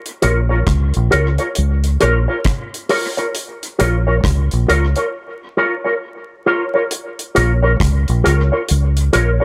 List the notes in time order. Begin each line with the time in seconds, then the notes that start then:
0.06 closed hi-hat
0.22 A#1 F4 A#4 C#5, closed hi-hat
0.49 F4 A#4 C#5
0.67 C#2, kick, cross-stick, closed hi-hat
0.94 A#1, closed hi-hat
1.11 C#2 F4 A#4 C#5, closed hi-hat
1.38 F4 A#4 C#5, closed hi-hat
1.55 C#2, closed hi-hat
1.84 closed hi-hat
2.00 A#1 F4 A#4 C#5, closed hi-hat
2.28 F4 A#4 C#5
2.45 kick, cross-stick, closed hi-hat
2.74 closed hi-hat
2.89 F4 A#4 C#5, open hi-hat
3.17 F4 A#4 C#5, closed hi-hat
3.35 closed hi-hat
3.63 closed hi-hat
3.79 A#1 F4 A#4 C#5, closed hi-hat
4.07 F4 A#4 C#5
4.24 C#2, kick, cross-stick, closed hi-hat
4.51 A#1, closed hi-hat
4.68 C#2 F4 A#4 C#5, closed hi-hat
4.96 F4 A#4 C#5, closed hi-hat
5.57 F4 A#4 C#5
5.84 F4 A#4 C#5
6.46 F4 A#4 C#5
6.74 F4 A#4 C#5
6.91 closed hi-hat
7.19 closed hi-hat
7.35 A#1 F4 A#4 C#5, closed hi-hat
7.63 F4 A#4 C#5
7.80 C#2, kick, cross-stick, closed hi-hat
8.08 A#1, closed hi-hat
8.24 C#2 F4 A#4 C#5, closed hi-hat
8.52 F4 A#4 C#5
8.68 C#2, closed hi-hat
8.97 closed hi-hat
9.13 A#1 F4 A#4 C#5, closed hi-hat
9.40 F4 A#4 C#5